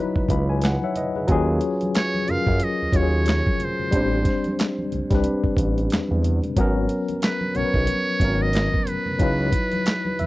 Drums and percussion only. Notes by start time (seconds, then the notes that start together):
0.16 kick, muted conga
0.29 kick, closed hi-hat
0.62 snare, clap, closed hi-hat
0.82 muted conga, high conga
0.96 closed hi-hat, low conga
1.15 low conga
1.28 kick, closed hi-hat
1.61 closed hi-hat
1.81 closed hi-hat, high conga
1.95 snare, clap, closed hi-hat
2.14 muted conga, high conga
2.28 closed hi-hat, low conga
2.47 kick
2.60 closed hi-hat, high conga
2.81 muted conga
2.92 kick, closed hi-hat
3.26 snare, clap, closed hi-hat
3.45 kick, muted conga, high conga
3.59 closed hi-hat, low conga
3.79 low conga
3.92 kick, closed hi-hat
4.13 muted conga
4.25 kick, snare, closed hi-hat
4.44 closed hi-hat, high conga
4.59 snare, clap, closed hi-hat
4.79 high conga
4.92 closed hi-hat, low conga
5.11 kick, snare, closed hi-hat
5.24 closed hi-hat, high conga
5.44 kick, muted conga
5.57 kick, closed hi-hat
5.78 closed hi-hat
5.90 snare, clap, closed hi-hat, muted conga
6.08 muted conga, high conga
6.23 closed hi-hat, low conga
6.42 closed hi-hat, low conga
6.56 kick, closed hi-hat, muted conga
6.89 closed hi-hat
7.08 closed hi-hat, high conga
7.20 snare, clap, closed hi-hat, muted conga
7.41 high conga
7.55 closed hi-hat, low conga
7.74 kick
7.87 closed hi-hat, muted conga, high conga
8.20 kick, closed hi-hat
8.53 snare, clap, closed hi-hat
8.72 kick, muted conga, high conga
8.85 closed hi-hat, low conga
9.06 low conga
9.19 kick, closed hi-hat
9.39 muted conga
9.52 kick, closed hi-hat
9.72 closed hi-hat, high conga
9.84 snare, clap, closed hi-hat, muted conga
10.05 muted conga, high conga
10.19 closed hi-hat, low conga